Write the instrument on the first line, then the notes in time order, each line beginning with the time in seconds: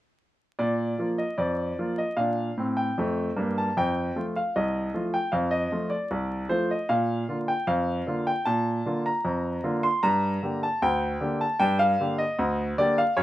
grand piano
0.59 A#2 D5
0.98 F3 A#3 F4
1.18 D#5
1.38 F2 D5
1.79 F3 A#3 F4
1.98 D#5
2.17 A#2 D4 F5
2.58 A2 C4
2.77 G5
2.98 F2 A3
3.37 G2 A#3
3.58 A5
3.77 F2 G5
4.16 F3 A3 F4
4.36 F5
4.56 C2 D#5
4.94 F3 A3 F4
5.14 G5
5.32 F2 F5
5.51 D#5
5.72 F3 A3 F4
5.90 D5
6.11 C2
6.49 F3 A3 F4 C5
6.71 D#5
6.89 A#2 F5
7.28 D3 A#3 F4
7.48 G5
7.67 F2 F5
8.07 D3 A#3 F4
8.27 G5
8.45 A#2 A5
8.86 D3 A#3 F4
9.06 A#5
9.25 F2
9.64 D3 A#3 F4
9.83 C6
10.03 G2 A#5
10.43 D3 A#3 G4
10.63 A5
10.82 D2 G5
11.21 D3 A#3 G4
11.41 A5
11.60 G2 G5
11.79 F5
12.00 D3 A#3 G4
12.18 D#5
12.39 D2
12.78 D3 A#3 G4 D5
12.98 F5
13.17 F#2 C#5